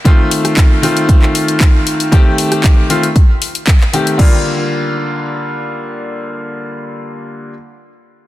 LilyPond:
<<
  \new Staff \with { instrumentName = "Grand piano" } { \time 4/4 \key g \minor \tempo 4 = 116 <ees a c' f'>4. <ees a c' f'>2~ <ees a c' f'>8 | <ees a c' g'>4. <ees a c' f'>8 r4. <ees a c' g'>8 | <d g bes f'>1~ | <d g bes f'>1 | }
  \new DrumStaff \with { instrumentName = "Drums" } \drummode { \time 4/4 <hh bd>8 hho16 <hh ss>16 <hc hh bd>8 <hho ss>16 hh16 <hh bd>16 hc16 hho16 hh16 <hc hh bd>8 hho16 hh16 | <hh bd>8 hho16 <hh ss>16 <hc hh bd>8 hho16 hh16 <hh bd>8 hho16 hh16 <hc hh bd>16 hc16 hho16 hh16 | <cymc bd>4 r4 r4 r4 | r4 r4 r4 r4 | }
>>